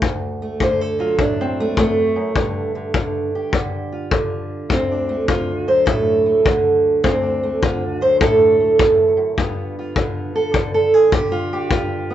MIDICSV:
0, 0, Header, 1, 3, 480
1, 0, Start_track
1, 0, Tempo, 583658
1, 24, Time_signature, 4, 2, 24, 8
1, 9988, End_track
2, 0, Start_track
2, 0, Title_t, "Steel-string acoustic guitar"
2, 0, Program_c, 0, 25
2, 19, Note_on_c, 0, 38, 67
2, 346, Note_on_c, 0, 57, 54
2, 493, Note_on_c, 0, 50, 70
2, 511, Note_on_c, 0, 72, 90
2, 668, Note_off_c, 0, 72, 0
2, 668, Note_on_c, 0, 69, 80
2, 813, Note_on_c, 0, 54, 48
2, 818, Note_off_c, 0, 57, 0
2, 821, Note_on_c, 0, 65, 89
2, 973, Note_on_c, 0, 45, 66
2, 983, Note_off_c, 0, 65, 0
2, 986, Note_off_c, 0, 69, 0
2, 994, Note_on_c, 0, 62, 80
2, 1139, Note_off_c, 0, 50, 0
2, 1158, Note_on_c, 0, 60, 78
2, 1318, Note_on_c, 0, 57, 88
2, 1458, Note_off_c, 0, 38, 0
2, 1460, Note_off_c, 0, 57, 0
2, 1461, Note_on_c, 0, 40, 59
2, 1470, Note_on_c, 0, 57, 109
2, 1630, Note_off_c, 0, 62, 0
2, 1772, Note_off_c, 0, 40, 0
2, 1775, Note_on_c, 0, 42, 66
2, 1792, Note_off_c, 0, 60, 0
2, 1937, Note_off_c, 0, 42, 0
2, 1940, Note_off_c, 0, 45, 0
2, 1940, Note_on_c, 0, 43, 69
2, 1943, Note_off_c, 0, 54, 0
2, 1946, Note_on_c, 0, 50, 48
2, 2253, Note_off_c, 0, 50, 0
2, 2263, Note_on_c, 0, 50, 50
2, 2416, Note_off_c, 0, 50, 0
2, 2426, Note_on_c, 0, 50, 64
2, 2757, Note_on_c, 0, 67, 46
2, 2900, Note_off_c, 0, 50, 0
2, 2910, Note_off_c, 0, 57, 0
2, 2910, Note_on_c, 0, 50, 67
2, 3227, Note_on_c, 0, 65, 47
2, 3370, Note_off_c, 0, 50, 0
2, 3380, Note_on_c, 0, 50, 64
2, 3846, Note_off_c, 0, 43, 0
2, 3852, Note_off_c, 0, 65, 0
2, 3857, Note_off_c, 0, 67, 0
2, 3860, Note_on_c, 0, 38, 69
2, 3885, Note_on_c, 0, 60, 91
2, 4041, Note_on_c, 0, 62, 92
2, 4186, Note_on_c, 0, 57, 54
2, 4337, Note_off_c, 0, 50, 0
2, 4341, Note_on_c, 0, 50, 66
2, 4349, Note_off_c, 0, 57, 0
2, 4352, Note_on_c, 0, 65, 88
2, 4518, Note_off_c, 0, 60, 0
2, 4669, Note_off_c, 0, 62, 0
2, 4669, Note_on_c, 0, 54, 48
2, 4671, Note_off_c, 0, 65, 0
2, 4672, Note_on_c, 0, 72, 89
2, 4817, Note_off_c, 0, 72, 0
2, 4817, Note_on_c, 0, 69, 90
2, 4831, Note_on_c, 0, 45, 72
2, 5146, Note_on_c, 0, 57, 45
2, 5293, Note_off_c, 0, 50, 0
2, 5303, Note_on_c, 0, 50, 65
2, 5311, Note_off_c, 0, 45, 0
2, 5780, Note_off_c, 0, 38, 0
2, 5783, Note_off_c, 0, 54, 0
2, 5784, Note_off_c, 0, 69, 0
2, 5787, Note_on_c, 0, 60, 99
2, 5790, Note_on_c, 0, 38, 75
2, 5935, Note_on_c, 0, 62, 85
2, 6103, Note_off_c, 0, 57, 0
2, 6113, Note_on_c, 0, 57, 51
2, 6260, Note_off_c, 0, 50, 0
2, 6265, Note_off_c, 0, 57, 0
2, 6268, Note_on_c, 0, 65, 87
2, 6269, Note_on_c, 0, 50, 64
2, 6428, Note_off_c, 0, 60, 0
2, 6583, Note_off_c, 0, 62, 0
2, 6588, Note_off_c, 0, 65, 0
2, 6589, Note_on_c, 0, 54, 48
2, 6596, Note_on_c, 0, 72, 89
2, 6745, Note_off_c, 0, 72, 0
2, 6747, Note_on_c, 0, 45, 66
2, 6748, Note_on_c, 0, 69, 101
2, 7073, Note_on_c, 0, 57, 43
2, 7230, Note_off_c, 0, 38, 0
2, 7241, Note_on_c, 0, 40, 63
2, 7538, Note_off_c, 0, 40, 0
2, 7541, Note_on_c, 0, 42, 62
2, 7707, Note_off_c, 0, 69, 0
2, 7708, Note_off_c, 0, 42, 0
2, 7708, Note_off_c, 0, 45, 0
2, 7709, Note_off_c, 0, 50, 0
2, 7712, Note_off_c, 0, 54, 0
2, 7714, Note_off_c, 0, 57, 0
2, 7723, Note_on_c, 0, 43, 74
2, 7727, Note_on_c, 0, 50, 50
2, 7735, Note_on_c, 0, 59, 50
2, 7740, Note_on_c, 0, 65, 48
2, 8046, Note_off_c, 0, 65, 0
2, 8049, Note_on_c, 0, 65, 51
2, 8192, Note_off_c, 0, 50, 0
2, 8202, Note_on_c, 0, 50, 65
2, 8516, Note_on_c, 0, 69, 96
2, 8675, Note_off_c, 0, 50, 0
2, 8685, Note_on_c, 0, 50, 67
2, 8825, Note_off_c, 0, 69, 0
2, 8835, Note_on_c, 0, 69, 90
2, 8995, Note_off_c, 0, 69, 0
2, 8995, Note_on_c, 0, 68, 96
2, 9150, Note_off_c, 0, 50, 0
2, 9152, Note_off_c, 0, 68, 0
2, 9152, Note_on_c, 0, 67, 99
2, 9160, Note_on_c, 0, 50, 65
2, 9297, Note_off_c, 0, 65, 0
2, 9307, Note_on_c, 0, 65, 98
2, 9469, Note_off_c, 0, 67, 0
2, 9481, Note_on_c, 0, 67, 78
2, 9613, Note_off_c, 0, 43, 0
2, 9620, Note_off_c, 0, 59, 0
2, 9626, Note_off_c, 0, 65, 0
2, 9635, Note_on_c, 0, 43, 68
2, 9639, Note_on_c, 0, 65, 88
2, 9953, Note_on_c, 0, 59, 49
2, 9988, Note_off_c, 0, 43, 0
2, 9988, Note_off_c, 0, 50, 0
2, 9988, Note_off_c, 0, 59, 0
2, 9988, Note_off_c, 0, 65, 0
2, 9988, Note_off_c, 0, 67, 0
2, 9988, End_track
3, 0, Start_track
3, 0, Title_t, "Drums"
3, 17, Note_on_c, 9, 36, 68
3, 99, Note_off_c, 9, 36, 0
3, 496, Note_on_c, 9, 36, 61
3, 578, Note_off_c, 9, 36, 0
3, 976, Note_on_c, 9, 36, 66
3, 1058, Note_off_c, 9, 36, 0
3, 1457, Note_on_c, 9, 36, 69
3, 1539, Note_off_c, 9, 36, 0
3, 1937, Note_on_c, 9, 36, 67
3, 2020, Note_off_c, 9, 36, 0
3, 2419, Note_on_c, 9, 36, 68
3, 2502, Note_off_c, 9, 36, 0
3, 2902, Note_on_c, 9, 36, 69
3, 2984, Note_off_c, 9, 36, 0
3, 3384, Note_on_c, 9, 36, 76
3, 3466, Note_off_c, 9, 36, 0
3, 3865, Note_on_c, 9, 36, 65
3, 3948, Note_off_c, 9, 36, 0
3, 4345, Note_on_c, 9, 36, 65
3, 4427, Note_off_c, 9, 36, 0
3, 4827, Note_on_c, 9, 36, 69
3, 4909, Note_off_c, 9, 36, 0
3, 5310, Note_on_c, 9, 36, 76
3, 5392, Note_off_c, 9, 36, 0
3, 5791, Note_on_c, 9, 36, 65
3, 5873, Note_off_c, 9, 36, 0
3, 6272, Note_on_c, 9, 36, 69
3, 6354, Note_off_c, 9, 36, 0
3, 6751, Note_on_c, 9, 36, 74
3, 6834, Note_off_c, 9, 36, 0
3, 7232, Note_on_c, 9, 36, 75
3, 7315, Note_off_c, 9, 36, 0
3, 7712, Note_on_c, 9, 36, 61
3, 7794, Note_off_c, 9, 36, 0
3, 8191, Note_on_c, 9, 36, 68
3, 8273, Note_off_c, 9, 36, 0
3, 8669, Note_on_c, 9, 36, 66
3, 8751, Note_off_c, 9, 36, 0
3, 9148, Note_on_c, 9, 36, 78
3, 9230, Note_off_c, 9, 36, 0
3, 9627, Note_on_c, 9, 36, 68
3, 9709, Note_off_c, 9, 36, 0
3, 9988, End_track
0, 0, End_of_file